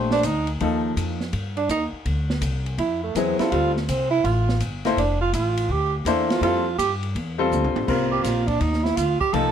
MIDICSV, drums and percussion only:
0, 0, Header, 1, 2, 480
1, 0, Start_track
1, 0, Tempo, 363857
1, 795, Time_signature, 4, 2, 24, 8
1, 12555, End_track
2, 0, Start_track
2, 0, Title_t, "Drums"
2, 143, Note_on_c, 9, 38, 58
2, 275, Note_off_c, 9, 38, 0
2, 306, Note_on_c, 9, 44, 59
2, 306, Note_on_c, 9, 51, 69
2, 438, Note_off_c, 9, 44, 0
2, 438, Note_off_c, 9, 51, 0
2, 620, Note_on_c, 9, 51, 49
2, 752, Note_off_c, 9, 51, 0
2, 797, Note_on_c, 9, 51, 59
2, 929, Note_off_c, 9, 51, 0
2, 1279, Note_on_c, 9, 44, 60
2, 1279, Note_on_c, 9, 51, 71
2, 1411, Note_off_c, 9, 44, 0
2, 1411, Note_off_c, 9, 51, 0
2, 1589, Note_on_c, 9, 38, 38
2, 1721, Note_off_c, 9, 38, 0
2, 1752, Note_on_c, 9, 51, 61
2, 1884, Note_off_c, 9, 51, 0
2, 2067, Note_on_c, 9, 51, 47
2, 2199, Note_off_c, 9, 51, 0
2, 2233, Note_on_c, 9, 44, 53
2, 2233, Note_on_c, 9, 51, 64
2, 2365, Note_off_c, 9, 44, 0
2, 2365, Note_off_c, 9, 51, 0
2, 2712, Note_on_c, 9, 51, 62
2, 2844, Note_off_c, 9, 51, 0
2, 3032, Note_on_c, 9, 38, 57
2, 3164, Note_off_c, 9, 38, 0
2, 3187, Note_on_c, 9, 44, 61
2, 3187, Note_on_c, 9, 51, 75
2, 3318, Note_off_c, 9, 44, 0
2, 3318, Note_off_c, 9, 51, 0
2, 3511, Note_on_c, 9, 51, 47
2, 3643, Note_off_c, 9, 51, 0
2, 3672, Note_on_c, 9, 51, 60
2, 3804, Note_off_c, 9, 51, 0
2, 4161, Note_on_c, 9, 44, 60
2, 4161, Note_on_c, 9, 51, 67
2, 4293, Note_off_c, 9, 44, 0
2, 4293, Note_off_c, 9, 51, 0
2, 4474, Note_on_c, 9, 51, 49
2, 4478, Note_on_c, 9, 38, 50
2, 4606, Note_off_c, 9, 51, 0
2, 4610, Note_off_c, 9, 38, 0
2, 4643, Note_on_c, 9, 51, 58
2, 4775, Note_off_c, 9, 51, 0
2, 4970, Note_on_c, 9, 38, 37
2, 5101, Note_off_c, 9, 38, 0
2, 5126, Note_on_c, 9, 44, 69
2, 5126, Note_on_c, 9, 51, 77
2, 5258, Note_off_c, 9, 44, 0
2, 5258, Note_off_c, 9, 51, 0
2, 5601, Note_on_c, 9, 51, 59
2, 5733, Note_off_c, 9, 51, 0
2, 5921, Note_on_c, 9, 38, 52
2, 6053, Note_off_c, 9, 38, 0
2, 6073, Note_on_c, 9, 44, 49
2, 6073, Note_on_c, 9, 51, 64
2, 6205, Note_off_c, 9, 44, 0
2, 6205, Note_off_c, 9, 51, 0
2, 6394, Note_on_c, 9, 51, 49
2, 6398, Note_on_c, 9, 38, 43
2, 6526, Note_off_c, 9, 51, 0
2, 6530, Note_off_c, 9, 38, 0
2, 6571, Note_on_c, 9, 51, 65
2, 6703, Note_off_c, 9, 51, 0
2, 7037, Note_on_c, 9, 44, 58
2, 7037, Note_on_c, 9, 51, 79
2, 7169, Note_off_c, 9, 44, 0
2, 7169, Note_off_c, 9, 51, 0
2, 7353, Note_on_c, 9, 51, 70
2, 7485, Note_off_c, 9, 51, 0
2, 7994, Note_on_c, 9, 44, 53
2, 7994, Note_on_c, 9, 51, 73
2, 8126, Note_off_c, 9, 44, 0
2, 8126, Note_off_c, 9, 51, 0
2, 8314, Note_on_c, 9, 51, 50
2, 8318, Note_on_c, 9, 38, 62
2, 8446, Note_off_c, 9, 51, 0
2, 8450, Note_off_c, 9, 38, 0
2, 8480, Note_on_c, 9, 51, 68
2, 8612, Note_off_c, 9, 51, 0
2, 8959, Note_on_c, 9, 44, 69
2, 8959, Note_on_c, 9, 51, 77
2, 9091, Note_off_c, 9, 44, 0
2, 9091, Note_off_c, 9, 51, 0
2, 9270, Note_on_c, 9, 51, 46
2, 9402, Note_off_c, 9, 51, 0
2, 9442, Note_on_c, 9, 51, 56
2, 9573, Note_off_c, 9, 51, 0
2, 9921, Note_on_c, 9, 44, 56
2, 9925, Note_on_c, 9, 48, 48
2, 10053, Note_off_c, 9, 44, 0
2, 10057, Note_off_c, 9, 48, 0
2, 10083, Note_on_c, 9, 48, 56
2, 10215, Note_off_c, 9, 48, 0
2, 10239, Note_on_c, 9, 48, 83
2, 10371, Note_off_c, 9, 48, 0
2, 10397, Note_on_c, 9, 36, 74
2, 10398, Note_on_c, 9, 49, 78
2, 10529, Note_off_c, 9, 36, 0
2, 10530, Note_off_c, 9, 49, 0
2, 10875, Note_on_c, 9, 44, 72
2, 10875, Note_on_c, 9, 51, 73
2, 10879, Note_on_c, 9, 38, 38
2, 11007, Note_off_c, 9, 44, 0
2, 11007, Note_off_c, 9, 51, 0
2, 11011, Note_off_c, 9, 38, 0
2, 11185, Note_on_c, 9, 51, 51
2, 11186, Note_on_c, 9, 36, 57
2, 11316, Note_off_c, 9, 51, 0
2, 11318, Note_off_c, 9, 36, 0
2, 11352, Note_on_c, 9, 51, 52
2, 11484, Note_off_c, 9, 51, 0
2, 11518, Note_on_c, 9, 38, 31
2, 11650, Note_off_c, 9, 38, 0
2, 11678, Note_on_c, 9, 38, 46
2, 11810, Note_off_c, 9, 38, 0
2, 11835, Note_on_c, 9, 44, 63
2, 11835, Note_on_c, 9, 51, 67
2, 11967, Note_off_c, 9, 44, 0
2, 11967, Note_off_c, 9, 51, 0
2, 12148, Note_on_c, 9, 36, 54
2, 12280, Note_off_c, 9, 36, 0
2, 12315, Note_on_c, 9, 51, 66
2, 12447, Note_off_c, 9, 51, 0
2, 12555, End_track
0, 0, End_of_file